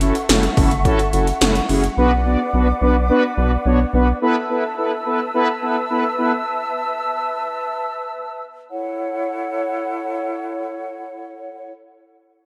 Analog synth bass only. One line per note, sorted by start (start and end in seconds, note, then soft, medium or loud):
0.00 0.12 F#1 loud
0.29 0.49 F#1 loud
0.57 0.87 F#1 loud
1.13 1.33 F#1 loud
1.41 1.61 F#1 loud
1.69 1.89 F#1 loud
1.97 2.37 B1 loud
2.54 2.73 B1 loud
2.82 3.11 B1 loud
3.38 3.57 B1 loud
3.66 3.85 B1 loud
3.93 4.13 B1 loud